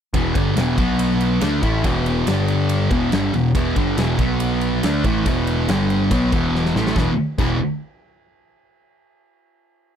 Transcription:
0.14 E1 E2 B2 E3, kick, ride
0.35 G1 G2 D3 G3, kick, ride
0.57 E1 E2 B2 E3, snare, ride
0.78 B1 B2 F#3 B3, kick, ride
0.99 ride
1.21 ride
1.41 D2 D3 A3 D4, snare, ride
1.63 A1 A2 E3 A3, kick, ride
1.83 E1 E2 B2 E3, kick, ride
2.06 ride
2.27 G1 G2 D3 G3, snare, ride
2.48 ride
2.69 ride
2.91 E1 E2 B2 E3, kick, ride
3.12 G1 G2 D3 G3, snare, ride
3.34 E1 E2 B2, ride
3.55 E1 E2 B2 E3, kick, ride
3.76 G1 G2 D3 G3, kick, ride
3.98 E1 E2 B2 E3, snare, ride
4.19 B1 B2 F#3 B3, kick, ride
4.40 ride
4.61 ride
4.83 D2 D3 A3 D4, snare, ride
5.04 A1 A2 E3 A3, kick, ride
5.26 E1 E2 B2 E3, kick, ride
5.47 ride
5.68 G1 G2 D3 G3, snare, ride
5.90 ride
6.11 B1 B2 F#3 B3, kick, ride
6.32 E1 E2 B2 E3, kick, ride
6.55 snare
6.66 snare
6.75 A1 A2 E3 A3, snare
6.87 snare
6.96 E1 E2 B2 E3, kick, snare
7.38 E1 E2 B2 E3, kick, crash

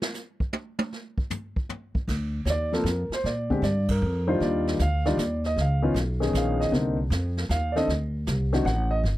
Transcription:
0.02 snare
0.14 snare, hi-hat pedal
0.40 kick
0.53 high tom
0.79 high tom
0.92 snare
1.18 kick
1.30 floor tom, hi-hat pedal
1.56 kick
1.69 floor tom
1.94 muted upright bass stroke, kick
2.08 D2, brush sweep, kick, snare, crash
2.45 D#2 C#5, snare, hi-hat pedal
2.50 D5
2.72 F3 A#3 C4 A4 A#4, snare
2.84 F2, snare, hi-hat pedal
3.10 muted upright bass stroke, snare
3.14 C5
3.24 A#2 D5, brush sweep, snare
3.50 D3 G#3 C4 G4, kick
3.62 G2 D5, snare, hi-hat pedal
3.89 A#4, kick, crash
4.02 F2
4.27 D#3 G3 D4 F4 C5
4.40 D#2 D5, brush sweep, snare
4.67 snare
4.79 D2 F5, snare, hi-hat pedal
5.05 D#3 G3 D4 F4 D5, snare
5.18 D#2, snare, hi-hat pedal
5.44 D#5, snare
5.56 C#2, brush sweep, snare
5.61 F5
5.82 D#3 B3 C#4 F4
5.94 B1, snare, hi-hat pedal
6.20 D#3 B3 C#4 G#4, snare
6.33 A#1, snare, hi-hat pedal
6.37 F5
6.60 D#5, snare
6.71 C2 D3 A#3 C4 D#4, brush sweep, snare
7.10 F2, snare, hi-hat pedal
7.37 snare
7.49 D#2 F5, snare, hi-hat pedal
7.72 D#3 C4 D5, snare
7.76 D4 A4 D#5
7.88 D2, brush sweep, snare
8.27 C2, snare, hi-hat pedal
8.53 D#3 C4 D4 F#4, snare
8.65 A1 F#5, snare
8.91 D#5
9.04 G1, brush sweep, snare

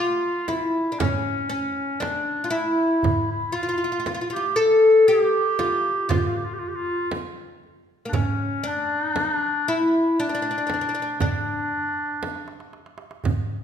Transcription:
Already playing: F4
0.48 E4, darbuka tek, frame drum
0.92 D4
0.99 C#4, frame drum, darbuka dum
1.49 C#4, darbuka ka
2.00 D4, darbuka tek, frame drum
2.44 F4
2.50 E4
3.03 darbuka dum, frame drum
3.31 E4
3.52 F4
3.63 F4
3.69 F4
3.78 F4
3.84 F4
3.92 F4
4.00 F4
4.06 F4, darbuka tek, frame drum
4.15 F4
4.21 F4
4.30 F4 G4
4.36 F4
4.56 A4
5.07 G4
5.59 F4, darbuka tek, frame drum
6.09 F4, darbuka dum, frame drum
6.17 G4
6.26 F4
6.36 G4
6.44 F4
6.54 G4
6.58 F4, darbuka ka
6.68 G4
6.75 F4
7.11 darbuka tek, frame drum
7.63 darbuka ka
8.05 A#3 D4
8.13 C#4, darbuka dum, frame drum
8.64 D4, darbuka ka
9.16 darbuka tek, frame drum
9.41 darbuka ka
9.67 E4, darbuka ka
10.18 D4, darbuka ka
10.29 D4
10.35 D4
10.42 D4
10.51 D4
10.58 D4
10.67 D4, darbuka tek, frame drum
10.74 D4
10.81 D4
10.89 D4
10.95 D4
11.02 D4
11.20 D4, darbuka dum, frame drum
11.72 darbuka ka
12.23 darbuka tek, frame drum
12.35 darbuka ka
12.48 darbuka tek
12.60 darbuka ka
12.73 darbuka tek
12.86 darbuka ka
12.98 darbuka tek
13.11 darbuka ka
13.24 darbuka dum, frame drum

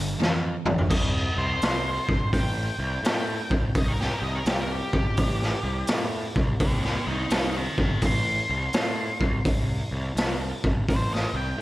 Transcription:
Already playing: G1 G2 D3
0.18 F2 G2 E3, snare
0.65 G1 G2 E3, mid tom
0.78 floor tom
0.90 C2 D#5, kick, crash
1.37 C2 C5
1.62 C2, snare, open hi-hat
2.08 G1, kick
2.33 A1 G5, kick, open hi-hat
2.78 C2
3.03 A2 G5, snare, open hi-hat
3.50 C2, kick
3.75 C2 D#5, kick, open hi-hat
3.88 A#4
4.00 G4, snare
4.13 A#4
4.22 C2 D#5
4.35 A#4
4.45 C2 G4, snare, open hi-hat
4.61 A#4
4.72 G4
4.93 G1, kick
5.17 A1, kick, open hi-hat
5.42 snare
5.63 C2
5.87 A2, snare, open hi-hat
6.36 C2, kick
6.60 C2 G4 D#5, kick, open hi-hat
6.84 G4 D#5, snare
7.07 C2 A#4 G5
7.30 C2 A#4, snare, open hi-hat
7.34 G5
7.57 G5 A#5
7.78 G1 G5 A#5, kick
8.02 A1, kick, open hi-hat
8.06 C6
8.49 C2
8.73 A2, snare, open hi-hat
9.20 C2, kick
9.45 C2, kick, open hi-hat
9.91 C2
10.15 C2, snare, open hi-hat
10.64 G1, kick
10.88 A1 C5, kick, open hi-hat
11.14 D#5, snare
11.34 C2 G5
11.58 A2

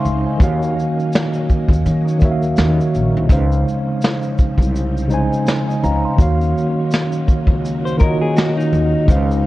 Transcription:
Already playing: C#3 F3 G#3 C4 C#4 D#4 C5 E5 F5 G#5 C6 C#6
0.05 C#2, shaker
0.26 D#5 G#5
0.37 D#2 D#3 A#3 C#4 F#4, kick
0.41 F#3 A#3 C#5 F5, closed hi-hat, shaker
0.63 shaker
0.79 shaker
1.00 shaker
1.13 snare, closed hi-hat, shaker
1.33 shaker
1.49 kick, shaker
1.68 D#2, kick
1.73 shaker
1.86 D#3, closed hi-hat, shaker
2.08 shaker
2.19 D#2 D#3 A#3 F#4, kick, shaker
2.24 C#5 E5
2.32 F5
2.43 shaker
2.57 D#2, snare, closed hi-hat, shaker
2.81 shaker
2.95 A#1, shaker
3.17 C2
3.26 C#2 C#3 F3 G#3 C4 D#4, kick
3.31 C5 F5, closed hi-hat, shaker
3.52 shaker
3.68 shaker
4.02 snare, closed hi-hat, shaker
4.22 shaker
4.38 kick, shaker
4.58 C2, kick
4.62 shaker
4.76 closed hi-hat, shaker
4.97 shaker
5.08 C#3 G#3 D#4, shaker
5.12 C5 G#5
5.33 shaker
5.47 snare, closed hi-hat, shaker
5.68 D#5 G#5, shaker
5.84 C#2 F5 A#5, shaker
6.05 F5 C6
6.16 D#2 D#3 F#3 A#3 D#4 F#4, kick, closed hi-hat, shaker
6.21 C#5 F5
6.41 shaker
6.58 shaker
6.91 snare, closed hi-hat, shaker
7.12 shaker
7.28 kick, shaker
7.47 C#2, kick
7.65 closed hi-hat, shaker
7.85 C5, shaker
7.97 D#3 A#3 F4 A#4, kick, shaker
8.02 C#5 D#5
8.07 F#4
8.22 G#4
8.37 F#4, snare, closed hi-hat, shaker
8.58 D#4, shaker
8.73 D#2, shaker
9.05 C#2 C#3 F3 G#3 C4 D#4, kick
9.10 C5 F5, closed hi-hat, shaker
9.31 shaker

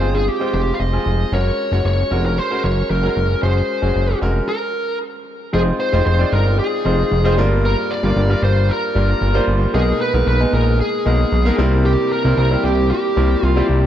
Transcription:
Already playing: A#4 C5
0.00 G1 G#3 C4 F4 G#4
0.15 G#4
0.28 G4
0.40 G#3 C4 F4 C5
0.53 F1 G4
0.74 F5
0.80 F1 D#5
0.92 G#3 C4 F4 G#4
1.06 F1
1.32 F#1 G#3 C#4 F#4 A#4 C#5
1.72 F#1 G#3 C#4 F#4 C#5
1.85 F#1 C#5
2.11 F1 G#3 C#4 F#4 A#4
2.26 A#4
2.38 C5
2.50 G#3 C#4 F#4 A#4
2.64 F#1 C#5
2.90 F#1 A#4
3.03 G#3 C#4 F#4 A#4
3.17 F#1
3.42 F#1 G#3 C#4 F#4 G#4 C5
3.82 F#1 G#3 C#4 F#4 G#4
3.96 F#1
4.21 F1 G#3 C#4 F#4 A#4
4.48 A#4
5.53 F1 G#3 C4 D#4 F4 G#4 C5
5.80 C5
5.92 F1 G#3 C4 D#4 F4 C5
6.06 F1 C5
6.19 G#3 C4 D#4 F4 D5
6.32 G1 A#4
6.59 G#4
6.85 F1 G#3 C4 D#4 F4 C5
7.12 F1
7.24 G#3 C4 D#4 F4 C5
7.37 G1 G2 G3 A#3 D4 F4 A#4
7.65 A#4
7.91 D5
8.03 G1 G3 A#3 D4 F4 A#4
8.16 G1
8.29 G3 A#3 D4 F4 A#4
8.43 G1 C5
8.70 A#4
8.95 G1 G3 A#3 D4 F4 A#4
9.22 G1
9.34 G3 A#3 D4 F4 C5
9.48 G1
9.74 B1 B2 G#3 A#3 B3 D#4 G#4 A#4
10.01 B4
10.13 B1 G#3 A#3 B3 D#4 A#4
10.27 B1 B4
10.40 G#3 A#3 B3 D#4 G#4
10.53 A#1 A#4
10.80 G#4
11.05 B1 G#3 A#3 B3 D#4 A#4
11.32 B1
11.45 G#3 A#3 B3 D#4 A#4
11.58 C2 C3 G3 A#3 C4 E4 A#4
11.86 G4
12.12 A#4
12.24 C2 G3 A#3 C4 E4 A#4
12.38 C2 A#4
12.50 G3 A#3 C4 E4 G4
12.64 C2 G4
12.91 G4
13.16 C2 G3 A#3 C4 E4 A#4
13.43 C2 F4
13.56 G3 A#3 C4 E4 G4
13.70 C2

